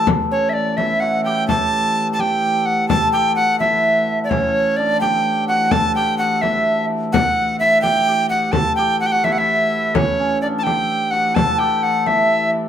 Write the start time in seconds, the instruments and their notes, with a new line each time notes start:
Already playing: hurdy-gurdy A2 E3, hammered dulcimer D4 E4 G4 A4 B4
0.07 frame drum
0.31 hammered dulcimer C#4, recorder C#5, frame drum
0.49 recorder E5
0.53 recorder D5, frame drum
0.77 hammered dulcimer E4, recorder E5, frame drum
1.00 hammered dulcimer F#4, recorder F#5
1.24 hammered dulcimer G4, recorder G5
1.48 hammered dulcimer A4, recorder A5, frame drum
1.95 frame drum
2.13 recorder A5
2.19 hammered dulcimer G4, recorder G5, frame drum
2.66 recorder F#5
2.88 hurdy-gurdy A2 E3, hammered dulcimer A4, recorder A5, frame drum
3.12 hammered dulcimer G4, recorder G5
3.36 hammered dulcimer F#4, recorder F#5
3.60 hammered dulcimer E4, recorder E5, frame drum
4.24 recorder D5
4.30 hammered dulcimer C#4, recorder C#5, frame drum
4.77 hammered dulcimer D4, recorder D5
5.01 hammered dulcimer G4, recorder G5, frame drum
5.48 hammered dulcimer F#4, recorder F#5
5.71 hammered dulcimer A4, recorder A5, frame drum
5.95 hammered dulcimer G4, recorder G5
6.18 hammered dulcimer F#4, recorder F#5
6.42 hammered dulcimer E4, recorder E5, frame drum
7.12 hammered dulcimer F#4, recorder F#5, frame drum
7.59 hammered dulcimer E4, recorder E5, frame drum
7.82 hammered dulcimer G4, recorder G5, frame drum
8.08 hammered dulcimer G4
8.29 hammered dulcimer F#4, recorder F#5, frame drum
8.52 hurdy-gurdy A2, hammered dulcimer A4, recorder A5, frame drum
8.56 hurdy-gurdy E3
8.76 hammered dulcimer G4, recorder G5
9.00 hammered dulcimer F#4, recorder F#5
9.06 recorder G5
9.12 hammered dulcimer F#4, recorder F#5
9.24 hammered dulcimer E4, recorder E5, frame drum
9.32 recorder F#5
9.38 hammered dulcimer E4, recorder E5
9.95 hammered dulcimer C#4, recorder C#5, frame drum
10.19 hammered dulcimer C#4
10.41 hammered dulcimer D4, recorder D5
10.58 recorder A5
10.63 hammered dulcimer G4, recorder G5, frame drum
11.11 hammered dulcimer F#4, recorder F#5
11.35 hammered dulcimer A4, recorder A5, frame drum
11.59 hammered dulcimer G4, recorder G5
11.83 recorder F#5
12.06 hammered dulcimer E4, recorder E5, frame drum